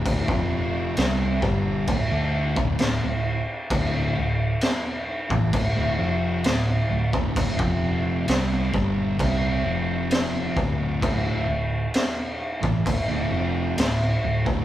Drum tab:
CC |x---x---x---x---|x---x---x---x---|x---x---x---x---|x---x---x---x---|
SD |----o-------o---|----o-------o---|----o-------o---|----o-------o---|
BD |oo----o-o--o----|o------oo------o|oo----o-o-----o-|o------oo------o|